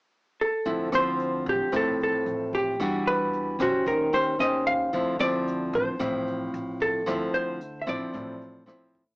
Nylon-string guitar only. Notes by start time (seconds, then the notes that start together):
0.65 D3 F3 C4 E4
0.92 F3 C4 E4
1.72 A2 F3 C4 E4
2.80 E3 G3 D4 F#4
3.60 C#4 G4 C5
3.86 D#3
4.13 C#4 G4 C5
4.39 C#4 G4 C5
4.93 D3 F3 C4 E4
5.19 F3 C4 E4
5.99 A2 F3 C4 E4
7.06 D3 F3 C4 E4
7.87 F3 C4 E4
8.13 A2
8.66 F3 C4 E4